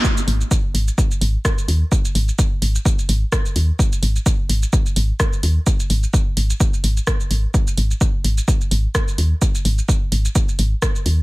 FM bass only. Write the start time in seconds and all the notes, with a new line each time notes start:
0.27 G#1
0.74 G#1
1.21 G#1
1.68 D#2
2.15 G#1
2.62 G#1
3.09 G#1
3.56 D#2
4.02 G#1
4.49 G#1
4.96 G#1
5.43 D#2
5.90 G#1
6.37 G#1
6.84 G#1
7.31 G#1
7.77 G#1
8.24 G#1
8.71 G#1
9.18 D#2
9.65 G#1
10.12 G#1
10.59 G#1
11.06 D#2